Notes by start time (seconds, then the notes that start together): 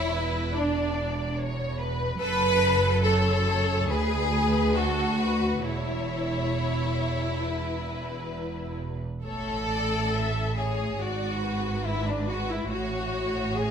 Already playing: E1 E2 E4 C#5
0.12 B4
0.54 D4 D5
1.38 C#5
1.80 B4
2.20 F#1 F#2 A4 B4
3.04 A4 C#5
3.47 C#5
3.88 D2 G#4 B4
4.34 B4
4.75 F#4 A4
5.20 B4
5.63 E1 E2 E4 C#5
7.43 B4
9.24 A1 A2 A4 C#5
9.71 D5
10.16 E5
10.58 G#4 C#5
11.00 G#1 G#2 F#4 D5
11.43 B4
11.85 E4
12.07 D4
12.28 F#4
12.50 E4
12.70 A1 A2 F#4 C#5
13.57 G#4